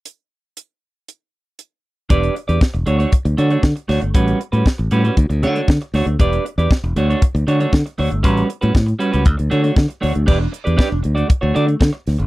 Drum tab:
CC |----------------|----------------|----------------|----------------|
HH |x---x---x---x---|xxxx-xxxxxxx-xox|xxxx-xxxxxxx-xox|xxxx-xxxxxxx-xox|
SD |----------------|----o-------o-o-|----o-------o-o-|----o-------o---|
BD |----------------|o---o---o---o---|o---o---o---o---|o---o---o---o---|

CC |----------------|x---------------|
HH |xxxx-xxxxxxx-xox|--xx--xxx-xx--ox|
SD |----o-------o---|----o-------o-o-|
BD |o---o---o---o---|o---o---o---o---|